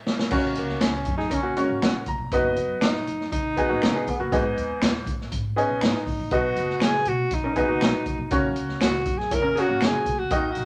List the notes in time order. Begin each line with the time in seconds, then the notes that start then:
0.07 snare
0.19 snare
0.31 F#1 A#3 C#4 F#4 C#5, kick, crash
0.55 C#2 A#3, closed hi-hat
0.69 snare
0.81 C#2 C#4, finger snap, snare, closed hi-hat
0.93 snare
1.05 F#2, kick, closed hi-hat
1.18 D#4 G#4, snare
1.31 F#1 C#4 A#4, kick, closed hi-hat
1.43 A#3 F#4
1.57 G#3 C#4 F#4 C#5, closed hi-hat
1.62 A#3
1.69 G#1
1.81 F#1 F#5, finger snap, snare, closed hi-hat
2.06 F#1 A#5, kick, closed hi-hat
2.18 E1
2.31 F#1 B3 D#4 F#4 D#5, kick, closed hi-hat
2.56 F#2, closed hi-hat
2.81 F#2 D#4, finger snap, snare, closed hi-hat
2.95 snare
3.07 F#2, closed hi-hat
3.21 snare
3.32 F#1 D#4, kick, closed hi-hat
3.57 B3 D#4 F#4 G#4, kick, closed hi-hat
3.69 G#1 A#3 F#4
3.82 F#1 C#4 A#4, finger snap, snare, closed hi-hat
3.96 B3 G#4
4.07 E1 B3, kick, closed hi-hat
4.19 F#1 A#3 F#4
4.32 G#1 G#2 B3 D#4 G#4 D#5, kick, closed hi-hat
4.57 D#2, closed hi-hat
4.81 D#2, finger snap, snare, closed hi-hat
4.95 snare
5.06 G#2, kick, closed hi-hat
5.21 snare
5.32 G#1, kick, closed hi-hat
5.56 B3 C#4 D#4 G#4 D#5, closed hi-hat
5.69 A#1
5.81 G#1 D#4, finger snap, snare, closed hi-hat
6.06 G#1, kick, open hi-hat
6.20 A#1
6.31 B1 B2 B3 D#4 F#4 D#5, kick, closed hi-hat
6.56 F#1, closed hi-hat
6.70 snare
6.80 F#1 G#4, finger snap, snare, closed hi-hat
6.94 snare
7.05 B2 F#4, closed hi-hat
7.31 B1 D#4, kick, closed hi-hat
7.44 C#4 A#4
7.56 B3 D#4 F#4 G#4 D#5, kick, closed hi-hat
7.68 C#2 A#3 F#4
7.80 B1, finger snap, snare, closed hi-hat
8.06 F#1, kick, closed hi-hat
8.18 E1
8.31 F#1 A#3 C#4 F#4 C#5, kick, closed hi-hat
8.56 C#2, closed hi-hat
8.69 snare
8.81 C#2 F#4, finger snap, snare, closed hi-hat
8.94 snare
9.05 F#2, kick, closed hi-hat
9.18 G#4, snare
9.31 F#1 E4 A#4 C#5, kick, closed hi-hat
9.42 C#4 A#4
9.55 A#3 C#4 F#4 G#4 C#5, closed hi-hat
9.60 F#4
9.68 G#1 A#3 F#4
9.81 F#1, finger snap, snare, closed hi-hat
9.85 G#4
10.05 B1, kick, closed hi-hat
10.19 C#2 F#4
10.30 D#2 D#3 A#3 D#4 F#4 D#5, kick, closed hi-hat
10.35 D#4
10.51 F#4, closed hi-hat
10.57 A#1